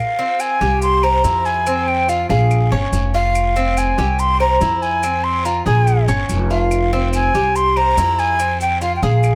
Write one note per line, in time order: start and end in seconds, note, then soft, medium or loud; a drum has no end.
0.00 0.42 F5 medium
0.19 0.60 C4 medium
0.40 0.82 G#5 loud
0.40 short guiro medium
0.40 claves medium
0.40 maracas medium
0.61 1.20 C2 loud
0.61 1.02 G4 medium
0.61 short guiro medium
0.61 maracas soft
0.82 1.05 C6 loud
0.82 long guiro medium
0.82 maracas medium
1.03 1.24 C5 medium
1.03 1.47 A#5 loud
1.03 claves medium
1.24 2.23 F2 medium
1.24 1.65 E4 medium
1.24 short guiro medium
1.24 maracas medium
1.45 1.89 G#5 loud
1.45 short guiro medium
1.45 maracas soft
1.66 2.08 C4 medium
1.66 long guiro medium
1.66 claves medium
1.66 maracas medium
1.88 2.11 G5 medium
2.08 2.29 F4 medium
2.08 2.29 F5 medium
2.08 short guiro medium
2.08 maracas medium
2.29 2.69 A#1 loud
2.29 2.71 G#4 medium
2.29 2.69 F5 medium
2.29 short guiro medium
2.29 maracas soft
2.51 long guiro medium
2.51 claves medium
2.51 maracas medium
2.71 2.91 G1 medium
2.71 3.13 C#4 medium
2.92 3.92 F1 medium
2.92 short guiro medium
2.92 maracas medium
3.14 3.55 F4 medium
3.14 3.79 F5 loud
3.14 short guiro medium
3.14 maracas soft
3.35 long guiro medium
3.35 claves medium
3.35 maracas medium
3.56 3.97 C4 medium
3.56 maracas medium
3.77 4.21 G#5 loud
3.77 short guiro medium
3.77 claves medium
3.77 maracas medium
3.98 4.57 C2 loud
3.98 4.39 G4 medium
3.98 short guiro medium
3.98 maracas soft
4.19 4.40 C6 loud
4.19 long guiro medium
4.19 maracas medium
4.40 4.61 C5 medium
4.40 4.84 A#5 loud
4.40 claves medium
4.61 5.60 F2 medium
4.61 5.02 E4 medium
4.61 short guiro medium
4.61 maracas medium
4.82 5.25 G#5 loud
4.82 short guiro medium
4.82 maracas soft
5.03 5.44 C4 medium
5.03 long guiro medium
5.03 claves medium
5.03 maracas medium
5.24 5.47 C6 loud
5.45 5.66 F4 medium
5.45 5.65 A#5 medium
5.45 short guiro medium
5.45 maracas medium
5.66 6.05 A#1 loud
5.66 6.07 G#4 medium
5.66 6.05 G#5 medium
5.66 short guiro medium
5.66 maracas soft
5.87 long guiro medium
5.87 claves medium
5.87 maracas medium
6.08 6.27 G1 medium
6.08 6.49 C#4 medium
6.08 maracas medium
6.29 7.28 F1 medium
6.29 short guiro medium
6.29 maracas medium
6.50 6.91 F4 medium
6.50 7.10 F5 medium
6.50 short guiro medium
6.50 maracas soft
6.71 long guiro medium
6.71 claves medium
6.71 maracas medium
6.93 7.33 C4 medium
7.13 7.57 G#5 loud
7.13 short guiro medium
7.13 claves medium
7.13 maracas medium
7.34 7.93 C2 medium
7.34 7.75 G4 medium
7.34 short guiro medium
7.34 maracas soft
7.56 7.79 C6 loud
7.56 long guiro medium
7.56 maracas medium
7.76 7.97 C5 medium
7.76 8.21 A#5 loud
7.76 claves medium
7.97 8.96 F2 medium
7.97 8.38 E4 medium
7.97 short guiro medium
7.97 maracas medium
8.18 8.61 G#5 loud
8.18 short guiro medium
8.18 maracas soft
8.39 8.80 C4 medium
8.39 long guiro medium
8.39 claves medium
8.39 maracas medium
8.61 8.81 G5 medium
8.61 maracas medium
8.81 9.02 F4 medium
8.81 8.95 F5 medium
8.81 short guiro medium
8.81 maracas medium
8.96 9.04 G5 medium
9.02 9.35 A#1 loud
9.02 9.35 G#4 medium
9.02 9.35 F5 medium
9.02 short guiro medium
9.02 maracas soft
9.23 long guiro medium
9.23 claves medium
9.23 maracas medium